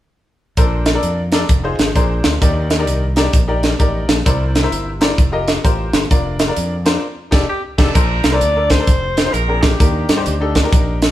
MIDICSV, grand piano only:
0, 0, Header, 1, 2, 480
1, 0, Start_track
1, 0, Key_signature, -2, "major"
1, 0, Tempo, 461184
1, 598, Time_signature, 4, 2, 24, 8
1, 11565, End_track
2, 0, Start_track
2, 0, Title_t, "Grand piano"
2, 0, Program_c, 0, 0
2, 594, Note_on_c, 0, 62, 80
2, 595, Note_on_c, 0, 69, 71
2, 598, Note_on_c, 0, 46, 63
2, 598, Note_on_c, 0, 70, 74
2, 604, Note_on_c, 0, 72, 75
2, 906, Note_off_c, 0, 62, 0
2, 907, Note_off_c, 0, 69, 0
2, 908, Note_off_c, 0, 70, 0
2, 911, Note_off_c, 0, 72, 0
2, 983, Note_on_c, 0, 62, 69
2, 986, Note_on_c, 0, 69, 70
2, 989, Note_on_c, 0, 70, 70
2, 993, Note_on_c, 0, 74, 85
2, 1238, Note_off_c, 0, 62, 0
2, 1240, Note_off_c, 0, 69, 0
2, 1241, Note_off_c, 0, 70, 0
2, 1243, Note_off_c, 0, 74, 0
2, 1338, Note_off_c, 0, 46, 0
2, 1377, Note_on_c, 0, 62, 78
2, 1378, Note_on_c, 0, 69, 72
2, 1382, Note_on_c, 0, 70, 71
2, 1385, Note_on_c, 0, 74, 95
2, 1555, Note_off_c, 0, 62, 0
2, 1556, Note_off_c, 0, 69, 0
2, 1557, Note_off_c, 0, 70, 0
2, 1559, Note_off_c, 0, 74, 0
2, 1701, Note_on_c, 0, 63, 69
2, 1705, Note_on_c, 0, 65, 72
2, 1708, Note_on_c, 0, 68, 71
2, 1713, Note_on_c, 0, 72, 82
2, 1951, Note_off_c, 0, 63, 0
2, 1954, Note_off_c, 0, 65, 0
2, 1955, Note_off_c, 0, 68, 0
2, 1958, Note_off_c, 0, 72, 0
2, 2031, Note_on_c, 0, 62, 78
2, 2033, Note_on_c, 0, 68, 69
2, 2034, Note_on_c, 0, 46, 64
2, 2037, Note_on_c, 0, 70, 69
2, 2040, Note_on_c, 0, 72, 85
2, 2405, Note_off_c, 0, 62, 0
2, 2405, Note_off_c, 0, 68, 0
2, 2408, Note_off_c, 0, 70, 0
2, 2409, Note_off_c, 0, 72, 0
2, 2481, Note_off_c, 0, 46, 0
2, 2509, Note_on_c, 0, 63, 74
2, 2513, Note_on_c, 0, 51, 69
2, 2513, Note_on_c, 0, 67, 69
2, 2514, Note_on_c, 0, 70, 65
2, 2517, Note_on_c, 0, 74, 89
2, 2822, Note_off_c, 0, 63, 0
2, 2824, Note_off_c, 0, 67, 0
2, 2824, Note_off_c, 0, 70, 0
2, 2826, Note_off_c, 0, 74, 0
2, 2901, Note_on_c, 0, 63, 78
2, 2904, Note_on_c, 0, 67, 66
2, 2909, Note_on_c, 0, 70, 67
2, 2911, Note_on_c, 0, 74, 84
2, 3156, Note_off_c, 0, 63, 0
2, 3157, Note_off_c, 0, 67, 0
2, 3160, Note_off_c, 0, 70, 0
2, 3161, Note_off_c, 0, 74, 0
2, 3255, Note_off_c, 0, 51, 0
2, 3292, Note_on_c, 0, 63, 79
2, 3295, Note_on_c, 0, 67, 74
2, 3298, Note_on_c, 0, 70, 72
2, 3304, Note_on_c, 0, 74, 88
2, 3484, Note_off_c, 0, 63, 0
2, 3485, Note_off_c, 0, 67, 0
2, 3487, Note_off_c, 0, 70, 0
2, 3490, Note_off_c, 0, 74, 0
2, 3617, Note_on_c, 0, 63, 75
2, 3620, Note_on_c, 0, 67, 71
2, 3625, Note_on_c, 0, 70, 66
2, 3629, Note_on_c, 0, 74, 84
2, 3869, Note_off_c, 0, 63, 0
2, 3870, Note_off_c, 0, 67, 0
2, 3873, Note_off_c, 0, 70, 0
2, 3874, Note_off_c, 0, 74, 0
2, 3946, Note_on_c, 0, 63, 79
2, 3951, Note_on_c, 0, 67, 68
2, 3955, Note_on_c, 0, 70, 72
2, 3955, Note_on_c, 0, 74, 85
2, 4322, Note_off_c, 0, 63, 0
2, 4324, Note_off_c, 0, 67, 0
2, 4326, Note_off_c, 0, 70, 0
2, 4326, Note_off_c, 0, 74, 0
2, 4430, Note_on_c, 0, 64, 77
2, 4433, Note_on_c, 0, 70, 67
2, 4434, Note_on_c, 0, 48, 68
2, 4434, Note_on_c, 0, 72, 65
2, 4438, Note_on_c, 0, 74, 82
2, 4742, Note_off_c, 0, 64, 0
2, 4744, Note_off_c, 0, 70, 0
2, 4744, Note_off_c, 0, 72, 0
2, 4746, Note_off_c, 0, 74, 0
2, 4820, Note_on_c, 0, 64, 79
2, 4824, Note_on_c, 0, 70, 73
2, 4828, Note_on_c, 0, 72, 67
2, 4830, Note_on_c, 0, 76, 86
2, 5075, Note_off_c, 0, 64, 0
2, 5078, Note_off_c, 0, 70, 0
2, 5079, Note_off_c, 0, 72, 0
2, 5080, Note_off_c, 0, 76, 0
2, 5176, Note_off_c, 0, 48, 0
2, 5210, Note_on_c, 0, 64, 77
2, 5215, Note_on_c, 0, 70, 76
2, 5217, Note_on_c, 0, 72, 72
2, 5222, Note_on_c, 0, 74, 92
2, 5391, Note_off_c, 0, 64, 0
2, 5393, Note_off_c, 0, 70, 0
2, 5394, Note_off_c, 0, 72, 0
2, 5397, Note_off_c, 0, 74, 0
2, 5535, Note_on_c, 0, 65, 75
2, 5540, Note_on_c, 0, 67, 71
2, 5545, Note_on_c, 0, 70, 69
2, 5546, Note_on_c, 0, 75, 87
2, 5788, Note_off_c, 0, 65, 0
2, 5790, Note_off_c, 0, 67, 0
2, 5793, Note_off_c, 0, 70, 0
2, 5793, Note_off_c, 0, 75, 0
2, 5867, Note_on_c, 0, 65, 72
2, 5870, Note_on_c, 0, 67, 66
2, 5873, Note_on_c, 0, 70, 72
2, 5877, Note_on_c, 0, 72, 86
2, 6243, Note_off_c, 0, 65, 0
2, 6245, Note_off_c, 0, 67, 0
2, 6246, Note_off_c, 0, 70, 0
2, 6248, Note_off_c, 0, 72, 0
2, 6354, Note_on_c, 0, 62, 77
2, 6358, Note_on_c, 0, 65, 74
2, 6358, Note_on_c, 0, 70, 67
2, 6363, Note_on_c, 0, 74, 85
2, 6665, Note_off_c, 0, 62, 0
2, 6667, Note_off_c, 0, 65, 0
2, 6667, Note_off_c, 0, 70, 0
2, 6670, Note_off_c, 0, 74, 0
2, 6741, Note_on_c, 0, 62, 70
2, 6745, Note_on_c, 0, 65, 66
2, 6748, Note_on_c, 0, 70, 75
2, 6753, Note_on_c, 0, 74, 86
2, 6997, Note_off_c, 0, 62, 0
2, 6999, Note_off_c, 0, 65, 0
2, 7000, Note_off_c, 0, 70, 0
2, 7003, Note_off_c, 0, 74, 0
2, 7130, Note_on_c, 0, 62, 81
2, 7135, Note_on_c, 0, 65, 69
2, 7139, Note_on_c, 0, 70, 73
2, 7140, Note_on_c, 0, 72, 91
2, 7312, Note_off_c, 0, 62, 0
2, 7314, Note_off_c, 0, 65, 0
2, 7316, Note_off_c, 0, 70, 0
2, 7317, Note_off_c, 0, 72, 0
2, 7608, Note_on_c, 0, 63, 87
2, 7611, Note_on_c, 0, 67, 97
2, 7615, Note_on_c, 0, 69, 84
2, 7617, Note_on_c, 0, 74, 93
2, 7733, Note_off_c, 0, 63, 0
2, 7736, Note_off_c, 0, 67, 0
2, 7738, Note_off_c, 0, 69, 0
2, 7739, Note_off_c, 0, 74, 0
2, 8097, Note_on_c, 0, 67, 76
2, 8098, Note_on_c, 0, 63, 81
2, 8102, Note_on_c, 0, 69, 79
2, 8104, Note_on_c, 0, 74, 72
2, 8219, Note_off_c, 0, 67, 0
2, 8220, Note_off_c, 0, 63, 0
2, 8222, Note_off_c, 0, 69, 0
2, 8223, Note_off_c, 0, 74, 0
2, 8272, Note_on_c, 0, 62, 66
2, 8276, Note_on_c, 0, 69, 65
2, 8278, Note_on_c, 0, 46, 63
2, 8280, Note_on_c, 0, 70, 62
2, 8282, Note_on_c, 0, 72, 75
2, 8586, Note_off_c, 0, 62, 0
2, 8588, Note_off_c, 0, 69, 0
2, 8590, Note_off_c, 0, 70, 0
2, 8591, Note_off_c, 0, 72, 0
2, 8667, Note_on_c, 0, 62, 71
2, 8669, Note_on_c, 0, 69, 68
2, 8672, Note_on_c, 0, 70, 66
2, 8677, Note_on_c, 0, 72, 74
2, 8816, Note_off_c, 0, 62, 0
2, 8817, Note_off_c, 0, 69, 0
2, 8819, Note_off_c, 0, 70, 0
2, 8821, Note_off_c, 0, 72, 0
2, 8906, Note_on_c, 0, 62, 71
2, 8908, Note_on_c, 0, 69, 59
2, 8911, Note_on_c, 0, 70, 59
2, 8915, Note_on_c, 0, 74, 66
2, 9021, Note_off_c, 0, 46, 0
2, 9095, Note_off_c, 0, 62, 0
2, 9096, Note_off_c, 0, 69, 0
2, 9097, Note_off_c, 0, 70, 0
2, 9099, Note_off_c, 0, 74, 0
2, 9150, Note_on_c, 0, 62, 62
2, 9154, Note_on_c, 0, 69, 57
2, 9156, Note_on_c, 0, 70, 61
2, 9161, Note_on_c, 0, 74, 75
2, 9239, Note_off_c, 0, 62, 0
2, 9241, Note_off_c, 0, 69, 0
2, 9242, Note_off_c, 0, 70, 0
2, 9245, Note_off_c, 0, 74, 0
2, 9632, Note_on_c, 0, 63, 69
2, 9632, Note_on_c, 0, 65, 66
2, 9636, Note_on_c, 0, 68, 63
2, 9639, Note_on_c, 0, 72, 76
2, 9720, Note_off_c, 0, 63, 0
2, 9721, Note_off_c, 0, 65, 0
2, 9722, Note_off_c, 0, 68, 0
2, 9722, Note_on_c, 0, 46, 61
2, 9724, Note_off_c, 0, 72, 0
2, 9870, Note_on_c, 0, 60, 69
2, 9872, Note_on_c, 0, 62, 64
2, 9876, Note_on_c, 0, 68, 63
2, 9879, Note_on_c, 0, 70, 70
2, 10119, Note_off_c, 0, 60, 0
2, 10120, Note_off_c, 0, 62, 0
2, 10122, Note_off_c, 0, 68, 0
2, 10123, Note_off_c, 0, 70, 0
2, 10168, Note_off_c, 0, 46, 0
2, 10196, Note_on_c, 0, 62, 73
2, 10197, Note_on_c, 0, 63, 64
2, 10198, Note_on_c, 0, 51, 58
2, 10201, Note_on_c, 0, 67, 64
2, 10201, Note_on_c, 0, 70, 81
2, 10509, Note_off_c, 0, 62, 0
2, 10510, Note_off_c, 0, 63, 0
2, 10512, Note_off_c, 0, 67, 0
2, 10512, Note_off_c, 0, 70, 0
2, 10580, Note_on_c, 0, 62, 85
2, 10582, Note_on_c, 0, 63, 76
2, 10586, Note_on_c, 0, 67, 77
2, 10589, Note_on_c, 0, 72, 89
2, 10734, Note_off_c, 0, 62, 0
2, 10735, Note_off_c, 0, 63, 0
2, 10737, Note_off_c, 0, 67, 0
2, 10739, Note_off_c, 0, 72, 0
2, 10825, Note_on_c, 0, 62, 80
2, 10830, Note_on_c, 0, 63, 70
2, 10834, Note_on_c, 0, 67, 71
2, 10838, Note_on_c, 0, 69, 89
2, 10942, Note_off_c, 0, 51, 0
2, 11015, Note_off_c, 0, 62, 0
2, 11018, Note_off_c, 0, 63, 0
2, 11020, Note_off_c, 0, 67, 0
2, 11022, Note_off_c, 0, 69, 0
2, 11062, Note_on_c, 0, 62, 81
2, 11066, Note_on_c, 0, 63, 72
2, 11072, Note_on_c, 0, 67, 74
2, 11074, Note_on_c, 0, 70, 85
2, 11427, Note_off_c, 0, 62, 0
2, 11429, Note_off_c, 0, 63, 0
2, 11431, Note_off_c, 0, 67, 0
2, 11433, Note_off_c, 0, 70, 0
2, 11565, End_track
0, 0, End_of_file